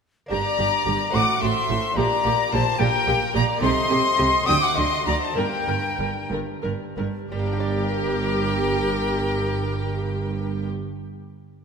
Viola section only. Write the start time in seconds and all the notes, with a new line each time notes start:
0.31 G4
0.58 G4
0.86 G4
1.14 F#4
1.42 F#4
1.70 F#4
1.97 G4
2.25 G4
2.53 G4
2.80 G4
3.07 G4
3.34 G4
3.62 G4
3.90 G4
4.18 G4
4.48 F#4
4.77 F#4
5.06 F#4
5.37 A#4
5.68 A#4
5.99 A#4
6.31 A#4
6.63 A#4
6.97 A#4
7.31 G4